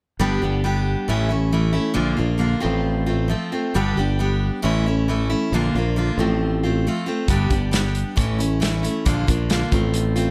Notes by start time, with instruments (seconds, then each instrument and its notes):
0.19 fingered electric bass G1, steel-string acoustic guitar G2 D3 G3 B3 D4 G4
0.42 fingered electric bass G1, steel-string acoustic guitar G3 B3 D4 G4
0.64 steel-string acoustic guitar G3 B3 D4 G4
1.08 fingered electric bass A1, steel-string acoustic guitar A2 E3 A3 C#4 E4
1.29 steel-string acoustic guitar A3 C#4 E4
1.52 steel-string acoustic guitar E3 A3 C#4 E4
1.73 steel-string acoustic guitar A3 C#4 E4
1.94 fingered electric bass A#1, steel-string acoustic guitar A#2 D3 A#3 D4 F4
2.17 fingered electric bass A#1, steel-string acoustic guitar A#3 D4 F4
2.38 steel-string acoustic guitar D3 A#3 D4 F4
2.60 steel-string acoustic guitar A2 F3 A3 C4 F4
2.65 fingered electric bass A1
3.06 steel-string acoustic guitar A3 C4 F4
3.28 steel-string acoustic guitar F3 A3 C4 F4
3.52 steel-string acoustic guitar A3 C4 F4
3.74 fingered electric bass G1, steel-string acoustic guitar G2 D3 G3 B3 D4 G4
3.97 fingered electric bass G1, steel-string acoustic guitar G3 B3 D4 G4
4.19 steel-string acoustic guitar G3 B3 D4 G4
4.62 fingered electric bass A1, steel-string acoustic guitar A2 E3 A3 C#4 E4
4.86 steel-string acoustic guitar A3 C#4 E4
5.08 steel-string acoustic guitar E3 A3 C#4 E4
5.30 steel-string acoustic guitar A3 C#4 E4
5.52 fingered electric bass A#1, steel-string acoustic guitar A#2 D3 A#3 D4 F4
5.75 fingered electric bass A#1, steel-string acoustic guitar A#3 D4 F4
5.96 steel-string acoustic guitar D3 A#3 D4 F4
6.18 fingered electric bass A1, steel-string acoustic guitar A2 F3 A3 C4 F4
6.63 steel-string acoustic guitar A3 C4 F4
6.87 steel-string acoustic guitar F3 A3 C4 F4
7.06 steel-string acoustic guitar A3 C4 F4
7.28 fingered electric bass G1, steel-string acoustic guitar G2 D3 G3 B3 D4 G4, kick, closed hi-hat
7.50 fingered electric bass G1, steel-string acoustic guitar G3 B3 D4 G4, kick, closed hi-hat
7.71 steel-string acoustic guitar G3 B3 D4 G4, snare, closed hi-hat
7.95 closed hi-hat
8.16 fingered electric bass A1, steel-string acoustic guitar A2 E3 A3 C#4 E4, kick, closed hi-hat
8.39 steel-string acoustic guitar A3 C#4 E4, closed hi-hat
8.60 steel-string acoustic guitar E3 A3 C#4 E4, snare, closed hi-hat
8.83 steel-string acoustic guitar A3 C#4 E4, closed hi-hat
9.05 fingered electric bass A#1, steel-string acoustic guitar A#2 D3 A#3 D4 F4, kick, closed hi-hat
9.27 fingered electric bass A#1, steel-string acoustic guitar A#3 D4 F4, kick, closed hi-hat
9.49 steel-string acoustic guitar D3 A#3 D4 F4, snare, closed hi-hat
9.72 fingered electric bass A1, steel-string acoustic guitar A2 F3 A3 C4 F4, kick, closed hi-hat
9.94 closed hi-hat
10.16 steel-string acoustic guitar A3 C4 F4, closed hi-hat